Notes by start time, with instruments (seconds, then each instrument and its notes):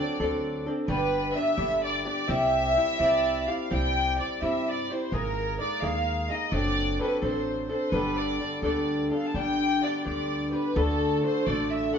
Already playing: nylon-string guitar F#3 C4 D4, violin section D5
0.00 nylon-string guitar A4
0.20 upright bass D2, nylon-string guitar D3 F#3 C4 D4 A4
0.66 nylon-string guitar C4 D4 A4
0.88 upright bass G1, nylon-string guitar G2 D3 G3 B3 D4 G4, violin section B4
1.35 nylon-string guitar G3 B3 D4 G4, violin section E5
1.57 upright bass G1, nylon-string guitar G2 D3 G3 B3 D4 G4
1.85 violin section D5
2.05 nylon-string guitar G3 B3 D4 G4, violin section D5
2.27 upright bass C2, nylon-string guitar C3 G3 C4 E4 G4, violin section E5
2.76 nylon-string guitar G3 C4 E4 G4
2.99 upright bass C2, nylon-string guitar C3 G3 C4 E4 G4, violin section D5
3.48 nylon-string guitar C4 E4 G4, violin section F5
3.70 upright bass C2, nylon-string guitar C3 G3 C4 E4 G4, violin section G5
4.19 nylon-string guitar G3 C4 E4 G4, violin section D5
4.42 upright bass G2, nylon-string guitar C3 G3 C4 E4 G4, violin section E5
4.68 violin section D5
4.90 nylon-string guitar C4 E4 G4, violin section C5
5.12 upright bass G#1, nylon-string guitar G#3 A#3 D#4 G#4, violin section A#4
5.60 nylon-string guitar G#3 A#3 D#4 G#4, violin section D5
5.82 upright bass D#2, nylon-string guitar G#3 A#3 D#4 G#4, violin section F5
6.30 nylon-string guitar A#3 D#4 G#4, violin section D#5
6.52 upright bass F#1, nylon-string guitar F#3 C4 D4 A4, violin section D5
6.99 nylon-string guitar F#3 C4 D4 A4, violin section B4
7.22 upright bass A1, nylon-string guitar F#3 C4 D4 A4, violin section C5
7.69 nylon-string guitar C4 D4 A4, violin section C5
7.92 upright bass G1, nylon-string guitar G2 D3 G3 B3 D4 A4, violin section B4
8.19 violin section D5
8.40 nylon-string guitar G3 B3 D4 A4
8.62 upright bass D2, nylon-string guitar G2 D3 G3 B3 D4 A4, violin section D5
9.11 nylon-string guitar G3 B3 D4 A4, violin section F5
9.28 violin section A5
9.34 upright bass G1, nylon-string guitar G2 D3 G3 B3 D4 G4, violin section G5
9.82 nylon-string guitar G3 B3 D4 G4, violin section D5
10.04 upright bass D2, nylon-string guitar G2 D3 G3 B3 D4 G4, violin section D5
10.52 nylon-string guitar G3 B3 D4 G4, violin section B4
10.75 upright bass D2, nylon-string guitar D3 A3 D4 F#4 A4, violin section A4
11.23 nylon-string guitar A3 D4 F#4 A4, violin section C5
11.47 upright bass A1, nylon-string guitar D3 A3 D4 F#4 A4, violin section D5
11.73 violin section E5
11.93 nylon-string guitar D4 F#4 A4